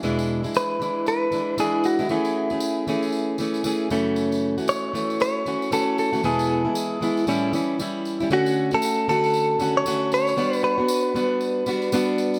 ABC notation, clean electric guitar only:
X:1
M:4/4
L:1/16
Q:"Swing 16ths" 1/4=116
K:A
V:1 name="Clean electric guitar"
z4 B4 B4 G2 F2 | E8 z8 | z4 c4 c4 A2 A2 | G8 z8 |
[K:D] F3 A3 A4- A c3 c2- | c2 B12 z2 |]